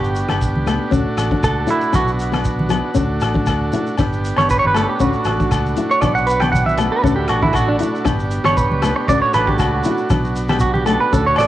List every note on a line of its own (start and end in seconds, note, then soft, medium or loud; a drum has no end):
0.00 0.23 G1 loud
0.00 0.92 B3 medium
0.00 2.91 D4 medium
0.00 0.15 G4 medium
0.00 0.92 G4 medium
0.04 shekere soft
0.15 closed hi-hat soft
0.15 shekere medium
0.28 0.51 G1 medium
0.28 0.45 B3 medium
0.28 cross-stick medium
0.28 high conga medium
0.28 low agogo medium
0.28 shekere soft
0.41 kick medium
0.41 shekere loud
0.55 0.77 C#2 medium
0.55 high conga medium
0.66 0.82 A3 medium
0.66 cross-stick medium
0.66 closed hi-hat medium
0.66 low conga medium
0.66 low agogo medium
0.66 shekere medium
0.91 1.04 D2 loud
0.91 1.93 A3 medium
0.91 1.07 C#4 medium
0.91 1.92 F#4 medium
0.91 kick medium
0.91 shekere medium
1.17 1.39 A1 medium
1.17 cross-stick medium
1.17 closed hi-hat soft
1.17 low conga medium
1.17 low agogo medium
1.17 shekere medium
1.31 1.47 D4 medium
1.31 kick medium
1.31 high conga medium
1.43 1.65 C#2 loud
1.43 1.68 A4 medium
1.43 kick medium
1.43 cross-stick medium
1.43 low agogo medium
1.43 shekere medium
1.67 1.83 E4 medium
1.67 1.94 E4 medium
1.67 closed hi-hat soft
1.67 low conga medium
1.67 shekere medium
1.81 shekere soft
1.92 2.81 B1 loud
1.92 2.95 B3 medium
1.92 2.08 D4 medium
1.92 3.96 F#4 medium
1.92 2.10 F#4 medium
1.92 kick medium
1.92 cross-stick medium
1.92 high conga medium
1.92 low agogo soft
1.92 shekere medium
2.08 shekere soft
2.20 closed hi-hat medium
2.20 shekere medium
2.32 2.48 B3 medium
2.32 cross-stick medium
2.32 high conga medium
2.32 low agogo medium
2.32 shekere soft
2.45 kick medium
2.45 shekere loud
2.59 high conga medium
2.69 2.85 F#3 medium
2.69 closed hi-hat medium
2.69 low conga medium
2.69 low agogo medium
2.69 shekere medium
2.94 3.18 D2 medium
2.94 3.97 A3 medium
2.94 3.10 C#4 loud
2.94 11.47 D4 medium
2.94 kick loud
2.94 shekere medium
3.20 3.43 A1 medium
3.20 cross-stick medium
3.20 closed hi-hat medium
3.20 low conga medium
3.20 low agogo medium
3.20 shekere medium
3.34 3.50 D4 medium
3.34 kick medium
3.34 high conga medium
3.46 3.69 D2 medium
3.46 kick medium
3.46 cross-stick medium
3.46 low agogo medium
3.46 shekere medium
3.73 3.89 E4 medium
3.73 closed hi-hat medium
3.73 low conga medium
3.73 shekere medium
3.87 shekere soft
3.97 4.32 G1 loud
3.97 5.00 B3 medium
3.97 4.14 D4 medium
3.97 4.99 G4 medium
3.97 kick medium
3.97 cross-stick medium
3.97 high conga medium
3.97 low agogo medium
3.97 shekere medium
4.13 shekere soft
4.25 closed hi-hat soft
4.25 shekere medium
4.36 4.59 G1 medium
4.36 4.53 B3 medium
4.36 4.49 C#5 medium
4.36 cross-stick medium
4.36 high conga medium
4.36 low agogo medium
4.36 shekere soft
4.50 4.58 B4 medium
4.50 kick medium
4.50 shekere medium
4.59 4.67 C#5 medium
4.64 4.85 G1 medium
4.64 4.75 B4 medium
4.64 high conga medium
4.74 4.90 A3 medium
4.74 4.88 A4 loud
4.74 cross-stick medium
4.74 closed hi-hat soft
4.74 low conga medium
4.74 low agogo medium
4.74 shekere medium
4.89 5.00 G4 medium
5.00 5.12 D2 loud
5.00 6.02 A3 medium
5.00 5.16 C#4 medium
5.00 5.52 F#4 medium
5.00 7.03 F#4 medium
5.00 kick medium
5.00 shekere medium
5.13 shekere soft
5.24 5.47 A1 medium
5.24 cross-stick medium
5.24 closed hi-hat soft
5.24 low conga medium
5.24 low agogo medium
5.24 shekere medium
5.40 5.55 D4 medium
5.40 kick medium
5.40 high conga medium
5.40 shekere soft
5.51 5.73 C#2 loud
5.51 kick medium
5.51 cross-stick medium
5.51 low agogo medium
5.51 shekere medium
5.66 shekere soft
5.76 5.92 E4 medium
5.76 closed hi-hat soft
5.76 low conga medium
5.76 shekere medium
5.91 6.01 C#5 medium
5.91 shekere soft
6.01 6.88 B1 loud
6.01 7.04 B3 medium
6.01 6.18 D4 medium
6.01 6.14 D5 medium
6.01 kick medium
6.01 cross-stick medium
6.01 high conga medium
6.01 low conga medium
6.01 low agogo medium
6.01 shekere medium
6.15 6.27 F#5 medium
6.15 shekere soft
6.26 6.40 B4 medium
6.26 closed hi-hat soft
6.26 shekere medium
6.40 6.57 B3 medium
6.40 6.51 G5 loud
6.40 cross-stick medium
6.40 high conga medium
6.40 low agogo medium
6.40 shekere soft
6.52 6.66 F#5 medium
6.52 kick medium
6.52 high conga medium
6.52 shekere medium
6.66 6.78 E5 medium
6.66 high conga medium
6.66 shekere soft
6.77 6.94 A3 medium
6.77 muted clean electric guitar stroke medium
6.77 closed hi-hat medium
6.77 low conga medium
6.77 low agogo medium
6.77 shekere medium
6.92 7.05 B4 medium
7.04 7.26 D2 medium
7.04 8.05 A3 medium
7.04 7.20 C#4 loud
7.04 8.06 F#4 medium
7.04 7.16 A4 medium
7.04 kick medium
7.04 shekere medium
7.16 7.29 G4 medium
7.28 7.51 A1 medium
7.28 7.43 F#4 medium
7.28 cross-stick medium
7.28 closed hi-hat medium
7.28 low conga medium
7.28 low agogo medium
7.43 7.59 D4 medium
7.43 7.55 E4 medium
7.43 kick medium
7.43 high conga medium
7.53 7.76 A1 medium
7.53 7.69 F#4 medium
7.53 kick medium
7.53 cross-stick medium
7.53 low agogo medium
7.53 shekere medium
7.69 7.76 D4 medium
7.79 7.96 E4 medium
7.79 closed hi-hat medium
7.79 low conga medium
7.79 shekere medium
7.96 shekere soft
8.05 8.39 G1 loud
8.05 9.07 B3 medium
8.05 8.21 D4 loud
8.05 9.07 G4 medium
8.05 kick loud
8.05 cross-stick medium
8.05 high conga medium
8.05 low agogo medium
8.05 shekere medium
8.19 shekere soft
8.31 closed hi-hat medium
8.31 shekere medium
8.44 8.66 G1 medium
8.44 8.60 B3 medium
8.44 8.57 C#5 medium
8.44 cross-stick medium
8.44 high conga medium
8.44 low agogo medium
8.44 shekere soft
8.57 8.96 B4 medium
8.57 kick medium
8.57 shekere loud
8.70 8.92 C#2 medium
8.70 high conga medium
8.82 8.98 A3 medium
8.82 cross-stick medium
8.82 closed hi-hat medium
8.82 low conga medium
8.82 low agogo medium
8.82 shekere medium
8.96 muted clean electric guitar stroke medium
9.07 9.20 D2 loud
9.07 10.09 A3 medium
9.07 9.25 C#4 loud
9.07 11.47 F#4 medium
9.07 9.21 D5 loud
9.07 kick medium
9.07 shekere medium
9.22 9.34 C#5 medium
9.33 9.56 A1 medium
9.33 9.47 B4 loud
9.33 cross-stick medium
9.33 closed hi-hat medium
9.33 low conga medium
9.33 low agogo medium
9.33 shekere medium
9.47 9.64 D4 medium
9.47 9.59 G4 medium
9.47 kick medium
9.47 high conga medium
9.59 9.81 C#2 loud
9.59 10.36 F#4 medium
9.59 kick medium
9.59 cross-stick medium
9.59 low agogo medium
9.59 shekere medium
9.84 10.01 E4 medium
9.84 closed hi-hat soft
9.84 low conga medium
9.84 shekere medium
9.97 shekere soft
10.10 10.97 B1 loud
10.10 11.11 B3 medium
10.10 10.26 D4 medium
10.10 kick loud
10.10 cross-stick medium
10.10 high conga medium
10.10 low agogo medium
10.10 shekere medium
10.24 shekere soft
10.36 closed hi-hat medium
10.36 shekere medium
10.48 10.65 B3 medium
10.48 10.60 G4 medium
10.48 cross-stick medium
10.48 high conga medium
10.48 low agogo medium
10.48 shekere soft
10.60 10.74 F#4 medium
10.60 kick medium
10.60 shekere medium
10.74 10.86 G4 medium
10.74 high conga medium
10.86 11.02 A3 medium
10.86 11.00 A4 loud
10.86 closed hi-hat soft
10.86 low conga medium
10.86 low agogo medium
10.86 shekere medium
11.01 11.12 B4 loud
11.11 11.35 D2 loud
11.11 11.47 A3 medium
11.11 11.28 C#4 medium
11.11 11.26 A4 medium
11.11 kick medium
11.11 shekere medium
11.26 11.38 C#5 medium
11.36 11.47 A1 medium
11.36 11.47 D5 loud
11.36 low conga medium
11.36 low agogo medium
11.36 shekere medium
11.40 cross-stick medium
11.40 closed hi-hat soft